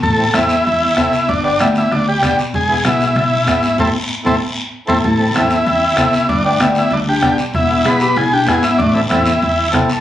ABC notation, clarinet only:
X:1
M:4/4
L:1/8
Q:1/4=192
K:Am
V:1 name="Clarinet"
z8 | z8 | z8 | z8 |
E2 C2 C2 C2 | G, A, B, B, G, D2 z | B,2 ^G =G E D E B, | A, C C4 z2 |]